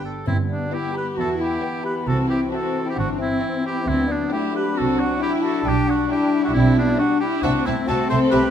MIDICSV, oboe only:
0, 0, Header, 1, 2, 480
1, 0, Start_track
1, 0, Key_signature, 1, "major"
1, 0, Tempo, 447427
1, 298, Time_signature, 4, 2, 24, 8
1, 9123, End_track
2, 0, Start_track
2, 0, Title_t, "Oboe"
2, 0, Program_c, 0, 68
2, 56, Note_on_c, 0, 69, 43
2, 284, Note_off_c, 0, 69, 0
2, 291, Note_on_c, 0, 64, 72
2, 402, Note_off_c, 0, 64, 0
2, 547, Note_on_c, 0, 62, 54
2, 792, Note_on_c, 0, 67, 63
2, 808, Note_off_c, 0, 62, 0
2, 1029, Note_off_c, 0, 67, 0
2, 1044, Note_on_c, 0, 71, 59
2, 1148, Note_off_c, 0, 71, 0
2, 1285, Note_on_c, 0, 69, 69
2, 1389, Note_off_c, 0, 69, 0
2, 1520, Note_on_c, 0, 67, 66
2, 1985, Note_off_c, 0, 67, 0
2, 1990, Note_on_c, 0, 71, 67
2, 2098, Note_off_c, 0, 71, 0
2, 2231, Note_on_c, 0, 69, 77
2, 2339, Note_off_c, 0, 69, 0
2, 2465, Note_on_c, 0, 67, 66
2, 2574, Note_off_c, 0, 67, 0
2, 2724, Note_on_c, 0, 69, 68
2, 3071, Note_off_c, 0, 69, 0
2, 3109, Note_on_c, 0, 67, 67
2, 3202, Note_off_c, 0, 67, 0
2, 3208, Note_on_c, 0, 66, 72
2, 3313, Note_off_c, 0, 66, 0
2, 3452, Note_on_c, 0, 64, 74
2, 3914, Note_off_c, 0, 64, 0
2, 3928, Note_on_c, 0, 67, 80
2, 4166, Note_on_c, 0, 64, 77
2, 4182, Note_off_c, 0, 67, 0
2, 4413, Note_on_c, 0, 62, 66
2, 4429, Note_off_c, 0, 64, 0
2, 4637, Note_off_c, 0, 62, 0
2, 4643, Note_on_c, 0, 67, 71
2, 4876, Note_off_c, 0, 67, 0
2, 4892, Note_on_c, 0, 71, 72
2, 5127, Note_on_c, 0, 69, 72
2, 5143, Note_off_c, 0, 71, 0
2, 5349, Note_on_c, 0, 66, 82
2, 5365, Note_off_c, 0, 69, 0
2, 5592, Note_off_c, 0, 66, 0
2, 5606, Note_on_c, 0, 67, 78
2, 5711, Note_off_c, 0, 67, 0
2, 5848, Note_on_c, 0, 69, 78
2, 6096, Note_on_c, 0, 67, 86
2, 6112, Note_off_c, 0, 69, 0
2, 6329, Note_on_c, 0, 66, 83
2, 6345, Note_off_c, 0, 67, 0
2, 6557, Note_off_c, 0, 66, 0
2, 6564, Note_on_c, 0, 67, 71
2, 6907, Note_off_c, 0, 67, 0
2, 6913, Note_on_c, 0, 66, 76
2, 6965, Note_off_c, 0, 66, 0
2, 7010, Note_on_c, 0, 64, 85
2, 7251, Note_off_c, 0, 64, 0
2, 7274, Note_on_c, 0, 62, 85
2, 7489, Note_off_c, 0, 62, 0
2, 7496, Note_on_c, 0, 66, 91
2, 7722, Note_off_c, 0, 66, 0
2, 7728, Note_on_c, 0, 67, 87
2, 7961, Note_on_c, 0, 66, 102
2, 7977, Note_off_c, 0, 67, 0
2, 8220, Note_on_c, 0, 64, 78
2, 8237, Note_off_c, 0, 66, 0
2, 8447, Note_off_c, 0, 64, 0
2, 8453, Note_on_c, 0, 69, 88
2, 8682, Note_off_c, 0, 69, 0
2, 8689, Note_on_c, 0, 72, 88
2, 8797, Note_off_c, 0, 72, 0
2, 8912, Note_on_c, 0, 71, 97
2, 9123, Note_off_c, 0, 71, 0
2, 9123, End_track
0, 0, End_of_file